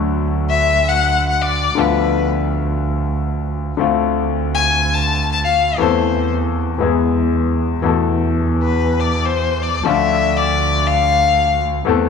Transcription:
Already playing: double bass D2, grand piano D2 D3 F#3 A3 F#4
0.50 violin E5
0.88 violin F#5
1.29 violin F#5
1.42 violin D5
1.76 double bass D2, grand piano D2 D3 F3 B3 F4
1.80 violin B4
3.77 double bass D2, grand piano D2 D3 A3 C4 F4
4.55 violin G#5
4.94 violin A5
5.32 violin A5
5.44 violin F5
5.78 double bass E2, grand piano E2 E3 A3 C4 A4, violin C5
6.80 double bass E2, grand piano E2 E3 G#3 B3 G#4
7.82 double bass E2, grand piano E2 B2 E3 A3 A4
8.62 violin B4
9.00 violin D5
9.25 violin C5
9.62 violin D5
9.83 grand piano D2 D3 F3 A3 D4 F4, double bass D2, violin E5
10.36 violin D5
10.87 violin F5
11.85 double bass E2, grand piano E2 E3 A3 C4 A4

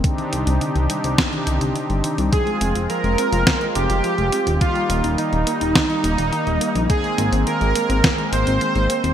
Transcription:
0.04 analog synth pad C3 C4 D4 D#4 G4, synth arpeggio sound D3, kick, closed hi-hat
0.18 synth arpeggio sound D#3, closed hi-hat
0.33 analog synth bass C2, synth arpeggio sound G3, closed hi-hat
0.47 analog synth bass C2, synth arpeggio sound C4, closed hi-hat
0.61 synth arpeggio sound D3, closed hi-hat
0.75 analog synth bass C2, synth arpeggio sound D#3, closed hi-hat
0.90 synth arpeggio sound G3, closed hi-hat
1.04 analog synth bass C2, synth arpeggio sound C4, closed hi-hat
1.18 synth arpeggio sound D3, kick, snare, closed hi-hat
1.33 synth arpeggio sound D#3, closed hi-hat
1.47 analog synth bass C2, synth arpeggio sound D3, closed hi-hat
1.61 analog synth bass C2, synth arpeggio sound D3, closed hi-hat
1.76 synth arpeggio sound D4, closed hi-hat
1.90 analog synth bass G1, synth arpeggio sound D3, closed hi-hat
2.04 synth arpeggio sound D#3, closed hi-hat
2.18 analog synth bass C2, synth arpeggio sound G3, closed hi-hat
2.33 synth arpeggio sound F3, analog synth pad G#3 F4, supersaw synth G#4, kick, closed hi-hat
2.47 synth arpeggio sound G#3, closed hi-hat
2.61 analog synth bass F1, synth arpeggio sound C4, closed hi-hat
2.75 analog synth bass F1, synth arpeggio sound F4, closed hi-hat
2.90 synth arpeggio sound F3, supersaw synth A#4, closed hi-hat
3.04 analog synth bass F1, synth arpeggio sound G#3, closed hi-hat
3.18 synth arpeggio sound C4, closed hi-hat
3.33 analog synth bass F1, synth arpeggio sound F4, closed hi-hat
3.47 synth arpeggio sound F3, kick, snare, closed hi-hat
3.61 synth arpeggio sound G#3, closed hi-hat
3.75 analog synth bass F1, synth arpeggio sound C4, supersaw synth G4, closed hi-hat
3.90 analog synth bass F1, synth arpeggio sound F4, closed hi-hat
4.04 synth arpeggio sound F3, closed hi-hat
4.18 analog synth bass F1, synth arpeggio sound G#3, closed hi-hat
4.32 synth arpeggio sound C4, closed hi-hat
4.47 analog synth bass D#1, synth arpeggio sound F4, closed hi-hat
4.61 synth arpeggio sound D#3, analog synth pad G3 A#3 D#4, supersaw synth F4, kick, closed hi-hat
4.75 synth arpeggio sound G3, closed hi-hat
4.90 analog synth bass D#1, synth arpeggio sound A#3, closed hi-hat
5.04 analog synth bass D#1, synth arpeggio sound D#4, closed hi-hat
5.18 synth arpeggio sound D#3, supersaw synth D#4, closed hi-hat
5.32 analog synth bass D#1, synth arpeggio sound G3, closed hi-hat
5.47 synth arpeggio sound A#3, closed hi-hat
5.61 analog synth bass D#1, synth arpeggio sound D#4, closed hi-hat
5.75 synth arpeggio sound D#3, kick, snare, closed hi-hat
5.90 synth arpeggio sound G3, closed hi-hat
6.04 analog synth bass D#1, synth arpeggio sound A#3, closed hi-hat
6.18 analog synth bass D#1, synth arpeggio sound D#4, closed hi-hat
6.32 synth arpeggio sound D#3, closed hi-hat
6.47 analog synth bass D#1, synth arpeggio sound G3, closed hi-hat
6.61 synth arpeggio sound A#3, closed hi-hat
6.75 analog synth bass A#1, synth arpeggio sound D#4, closed hi-hat
6.90 synth arpeggio sound D#3, analog synth pad G#3 C4, supersaw synth G#4, kick, closed hi-hat
7.04 synth arpeggio sound G#3, closed hi-hat
7.18 analog synth bass G#1, synth arpeggio sound A#3, closed hi-hat
7.32 analog synth bass G#1, synth arpeggio sound C4, closed hi-hat
7.47 synth arpeggio sound D#3, supersaw synth A#4, closed hi-hat
7.61 analog synth bass G#1, synth arpeggio sound G#3, closed hi-hat
7.75 synth arpeggio sound A#3, closed hi-hat
7.90 analog synth bass G#1, synth arpeggio sound C4, closed hi-hat
8.04 synth arpeggio sound D#3, kick, snare, closed hi-hat
8.18 synth arpeggio sound G#3, closed hi-hat
8.32 analog synth bass G#1, synth arpeggio sound A#3, supersaw synth C5, closed hi-hat
8.47 analog synth bass G#1, synth arpeggio sound C4, closed hi-hat
8.61 synth arpeggio sound D#3, closed hi-hat
8.75 analog synth bass G#1, synth arpeggio sound G#3, closed hi-hat
8.90 synth arpeggio sound A#3, closed hi-hat
9.04 analog synth bass D#1, synth arpeggio sound C4, closed hi-hat

